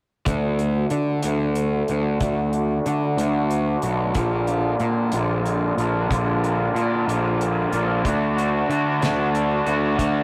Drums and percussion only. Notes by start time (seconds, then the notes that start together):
0.26 kick, closed hi-hat
0.59 closed hi-hat
0.90 closed hi-hat
1.23 closed hi-hat
1.55 closed hi-hat
1.88 closed hi-hat
2.20 kick, closed hi-hat
2.53 closed hi-hat
2.86 closed hi-hat
3.18 closed hi-hat
3.51 closed hi-hat
3.82 closed hi-hat
4.14 kick, closed hi-hat
4.47 closed hi-hat
4.80 closed hi-hat
5.12 closed hi-hat
5.46 closed hi-hat
5.78 closed hi-hat
6.11 kick, closed hi-hat
6.44 closed hi-hat
6.76 closed hi-hat
7.09 closed hi-hat
7.41 closed hi-hat
7.72 closed hi-hat
8.05 kick, closed hi-hat
8.38 closed hi-hat
8.70 closed hi-hat
9.02 snare, closed hi-hat
9.35 closed hi-hat
9.67 closed hi-hat
9.99 kick, closed hi-hat